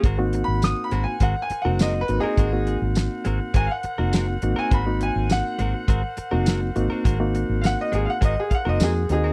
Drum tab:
HH |xxxxxxxx|xxxxxxxx|xxxxxxxx|xxxxxxxx|
TB |--x---x-|--x---x-|--x---x-|--x---x-|
SD |--o---o-|--o---o-|--o---o-|--o---o-|
BD |o---o---|o---o---|o---o---|o---oo--|